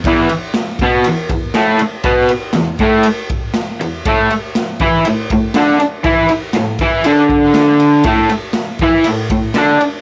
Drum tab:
RD |xxxxxxxx|xxxxxxxx|xxxxxxxx|xxxxxxxx|
SD |--o---o-|--o---o-|--o---o-|--o---o-|
BD |o--o-o--|o--o-o--|o--o-o--|o--o-o--|

RD |xxxxxxxx|
SD |--o---o-|
BD |o--o-o--|